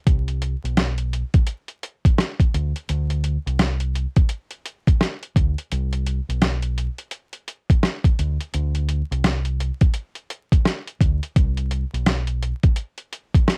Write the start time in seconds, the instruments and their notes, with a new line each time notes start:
0.07 fingered electric bass C2, kick, closed hi-hat
0.28 closed hi-hat
0.42 closed hi-hat
0.64 fingered electric bass B1, closed hi-hat
0.77 cross-stick, snare, closed hi-hat
0.98 closed hi-hat
1.13 closed hi-hat
1.34 kick, closed hi-hat
1.47 closed hi-hat
1.68 closed hi-hat
1.83 closed hi-hat
2.05 kick, closed hi-hat
2.18 cross-stick, snare, closed hi-hat
2.40 kick, closed hi-hat
2.54 fingered electric bass D2, closed hi-hat
2.76 closed hi-hat
2.89 fingered electric bass D2, closed hi-hat
3.10 closed hi-hat
3.24 closed hi-hat
3.46 fingered electric bass C2, closed hi-hat
3.59 cross-stick, snare, closed hi-hat
3.80 closed hi-hat
3.95 closed hi-hat
4.16 kick, closed hi-hat
4.29 closed hi-hat
4.51 closed hi-hat
4.66 closed hi-hat
4.87 kick, closed hi-hat
5.01 cross-stick, snare, closed hi-hat
5.23 closed hi-hat
5.36 fingered electric bass D2, kick, closed hi-hat
5.58 closed hi-hat
5.71 fingered electric bass C2, closed hi-hat
5.93 closed hi-hat
6.06 closed hi-hat
6.29 fingered electric bass B1, closed hi-hat
6.42 cross-stick, snare, closed hi-hat
6.63 closed hi-hat
6.78 closed hi-hat
6.98 closed hi-hat
7.11 closed hi-hat
7.33 closed hi-hat
7.48 closed hi-hat
7.70 kick, closed hi-hat
7.83 cross-stick, snare, closed hi-hat
8.04 kick, closed hi-hat
8.19 fingered electric bass D2, closed hi-hat
8.41 closed hi-hat
8.54 fingered electric bass D2, closed hi-hat
8.75 closed hi-hat
8.89 closed hi-hat
9.11 fingered electric bass C2, closed hi-hat
9.24 cross-stick, snare, closed hi-hat
9.45 closed hi-hat
9.60 closed hi-hat
9.81 kick, closed hi-hat
9.94 closed hi-hat
10.15 closed hi-hat
10.30 closed hi-hat
10.52 kick, closed hi-hat
10.65 cross-stick, snare, closed hi-hat
10.87 closed hi-hat
11.01 fingered electric bass D2, kick, closed hi-hat
11.23 closed hi-hat
11.36 fingered electric bass C2, kick, closed hi-hat
11.57 closed hi-hat
11.71 closed hi-hat
11.94 fingered electric bass B1, closed hi-hat
12.06 cross-stick, snare, closed hi-hat
12.27 closed hi-hat
12.43 closed hi-hat
12.63 kick, closed hi-hat
12.76 closed hi-hat
12.98 closed hi-hat
13.13 closed hi-hat
13.34 kick, closed hi-hat
13.48 cross-stick, snare, closed hi-hat